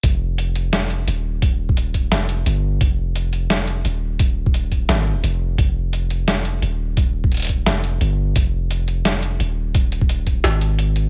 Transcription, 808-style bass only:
X:1
M:4/4
L:1/8
Q:"Swing 16ths" 1/4=173
K:Fm
V:1 name="808-style bass" clef=bass
F,,,6 E,,,2- | E,,,4 F,,,2 G,,,2 | F,,,6 E,,,2- | E,,,4 A,,,2 F,,,2 |
F,,,6 E,,,2- | E,,,4 F,,,2 G,,,2 | F,,,6 E,,,2- | E,,,4 A,,,4 |]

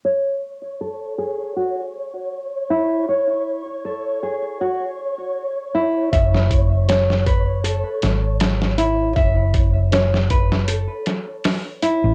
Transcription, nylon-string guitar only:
X:1
M:4/4
L:1/8
Q:"Swing 16ths" 1/4=79
K:F#m
V:1 name="Nylon-string guitar"
c z A G F z2 E | c z A G F z2 E | e z c B A z2 E | e z c B A z2 E |]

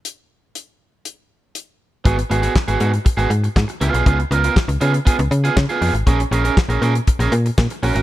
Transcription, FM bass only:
X:1
M:4/4
L:1/16
Q:1/4=120
K:G#dor
V:1 name="FM bass" clef=bass
z16 | G,,,2 G,,,2 z G,,, G,,2 z G,,, G,,2 G,, z C,, B,,, | C,,2 C,,2 z C,, C,2 z C,, C,2 C, z E,, G,,, | A,,,2 A,,,2 z A,,, A,,2 z A,,, A,,2 A,, z A,,, G,,, |]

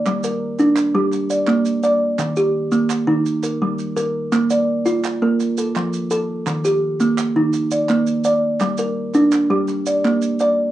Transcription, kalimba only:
X:1
M:12/8
L:1/8
Q:3/8=112
K:Bb
V:1 name="Kalimba"
z B3 z G2 d3 z2 | z G3 z E2 B3 z2 | z d3 z B2 A3 z2 | z G3 z E2 d3 z2 |
z B3 z G2 d3 z2 |]
V:2 name="Kalimba"
G,2 z D2 G, z2 B,2 d2 | E,2 z B,2 E, z2 G,2 B2 | B,2 z F2 B, z2 F,2 A2 | E,2 z B,2 E, z2 B,2 d2 |
G,2 z D2 G, z2 B,2 d2 |]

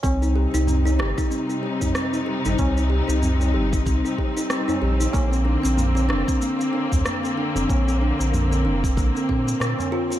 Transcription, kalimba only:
X:1
M:4/4
L:1/16
Q:"Swing 16ths" 1/4=94
K:Cm
V:1 name="Kalimba"
C E G E C E G E C E G E C E G E | C E G E C E G E C E G E C E G E | B, C D C B, C D C B, C D C B, C D C | B, C D C B, C D C B, C C C B C F F |]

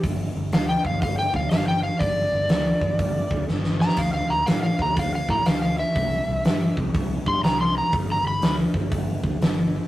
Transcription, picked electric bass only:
X:1
M:4/4
L:1/8
Q:"Swing" 1/4=122
K:Ddor
V:1 name="Picked electric bass" clef=bass
G,,, G,,, D,, G,,, G,,, D,, G,,,2 | G,,, G,,, D,, G,,, G,,, D,, G,,,2 | D,, D,, A,, D,, D,, A,, D,,2 | C,, C,, G,, C,, C,, G,, C,,2 |
G,,, G,,, D,, G,,, G,,, D,, G,,,2 |]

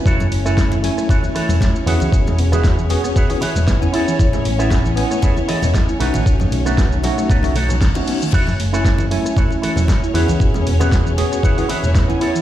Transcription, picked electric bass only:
X:1
M:4/4
L:1/16
Q:"Swing 16ths" 1/4=116
K:E
V:1 name="Picked electric bass" clef=bass
F,,, F,, F,,,4 z4 z E,,, z2 E,, C,, | E,,, E,, E,,,4 z4 z E,,,2 z3 | A,,, A,, A,,,4 z4 z E,,, z2 B,,, A,,, | B,,, F,,, B,,,4 z2 B,,,4 z4 |
F,,, F,, F,,,4 z4 z E,,, z2 E,, C,, | E,,, E,, E,,,4 z4 z E,,,2 z3 |]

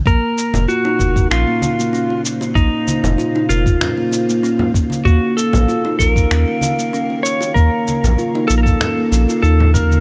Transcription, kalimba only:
X:1
M:4/4
L:1/16
Q:"Swing 16ths" 1/4=96
K:Bbm
V:1 name="Kalimba"
B, z3 F E B2 D B, z B, D4 | B, z3 F E B2 D B, z B, D4 | B, z3 F E B2 D B, z B, D4 | B, z3 F E B2 D B, z F E F, B, z |]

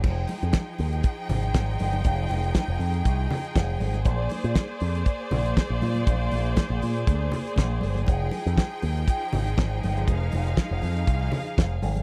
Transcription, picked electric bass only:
X:1
M:4/4
L:1/16
Q:1/4=120
K:Fdor
V:1 name="Picked electric bass" clef=bass
F,,,2 z F,, z2 E,,2 z2 A,,,2 A,,,2 G,,,2 | F,,,2 F,,,2 z F,,, F,,2 C,,2 z2 F,,,2 A,,,2 | B,,,2 z B,, z2 F,,2 z2 B,,,2 z B,,, B,,2 | B,,,2 B,,,2 z B,,, B,,2 D,,2 z2 B,,,2 G,,,2 |
F,,,2 z F,, z2 E,,2 z2 A,,,2 A,,,2 G,,,2 | F,,,2 F,,,2 z F,,, F,,2 C,,2 z2 F,,,2 A,,,2 |]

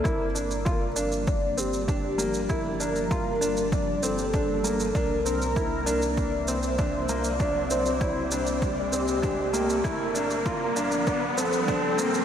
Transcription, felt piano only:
X:1
M:4/4
L:1/8
Q:1/4=98
K:Gdor
V:1 name="Felt piano"
E D F D2 C D B, | E D F D2 C D B, | D C E D2 C D B, | D C E D2 C D B, |
E D F D2 C D B, |]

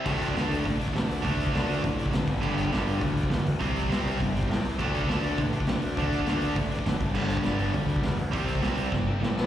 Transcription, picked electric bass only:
X:1
M:4/4
L:1/8
Q:1/4=203
K:G
V:1 name="Picked electric bass" clef=bass
D,,2 D,, D,, A,,,2 C, D,, | D,,2 D,, D,, A,,,2 C, G,,, | G,,,2 G,,, G,,, D,,2 E,, D,, | C,,2 C,, C,, G,,,2 A,, C,, |
D,,2 D,, D,, A,,,2 C, D,, | D,,2 D,, D,, A,,,2 F,,, G,,, | G,,,2 G,,, G,,, D,,2 E,, D,, | C,,2 C,, C,, G,,,2 A,, _B,,, |]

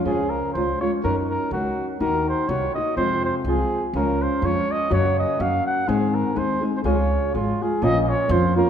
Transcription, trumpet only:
X:1
M:2/4
L:1/16
Q:"Swing" 1/4=124
K:Db
V:1 name="Trumpet"
A2 B2 c2 d2 | B2 B2 G3 z | B2 c2 d2 e2 | c2 c2 A3 z |
B2 c2 d2 e2 | d2 e2 f2 g2 | A2 B2 c2 z c | d4 F2 A2 |
[K:Bbm] e3/2 e/2 d2 c2 B2 |]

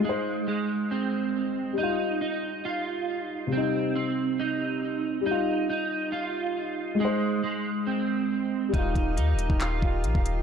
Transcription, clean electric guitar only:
X:1
M:4/4
L:1/8
Q:1/4=138
K:Eb
V:1 name="Clean electric guitar"
A,2 A,2 C4 | E2 E2 F4 | C2 C2 E4 | E2 E2 F4 |
A,2 A,2 C4 | E2 E2 F4 |]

